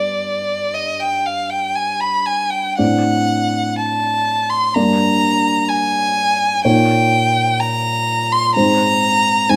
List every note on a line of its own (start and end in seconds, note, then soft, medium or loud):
0.00 2.75 G2 soft
0.00 2.75 B3 soft
0.00 2.74 D4 soft
0.00 0.75 D5 medium
0.00 2.74 D5 soft
0.74 1.02 D#5 medium
1.00 1.27 G5 soft
1.26 1.52 F5 soft
1.50 1.77 G5 soft
1.75 2.02 G#5 soft
2.00 2.27 B5 soft
2.26 2.52 G#5 soft
2.50 2.77 G5 soft
2.78 4.72 A2 soft
2.78 4.72 C4 soft
2.78 4.72 D4 soft
2.78 4.71 D5 soft
2.78 3.77 F#5 medium
3.78 4.51 A5 medium
4.50 4.76 C6 medium
4.74 6.60 G2 soft
4.74 6.60 A#3 soft
4.74 6.60 D4 soft
4.74 6.60 D5 soft
4.74 5.70 A#5 medium
5.69 6.64 G#5 medium
6.64 8.52 A#2 soft
6.64 8.52 A#3 soft
6.64 8.52 D#4 soft
6.64 8.52 C#5 soft
6.64 7.62 G5 medium
7.60 8.34 A#5 medium
8.32 8.54 C6 medium
8.55 9.46 G#2 soft
8.55 9.47 C4 soft
8.55 9.46 D#4 soft
8.55 9.47 C5 soft
8.55 9.51 A#5 medium
9.49 9.56 G#2 soft
9.49 9.56 C4 soft
9.49 9.56 D#4 soft
9.49 9.56 C5 soft
9.49 9.56 G#5 medium